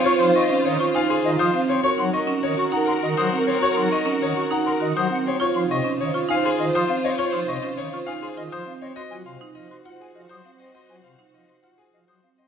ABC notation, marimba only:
X:1
M:3/4
L:1/16
Q:1/4=101
K:Db
V:1 name="Marimba"
F E z D z F E z F z C z | G E z D z G E z G z C z | G E z D z G E z G z C z | F E z D z F E z F z C z |
F E z D z F E z F z C z | G F z E z G F z G z C z | G F z E z G F z3 C z |]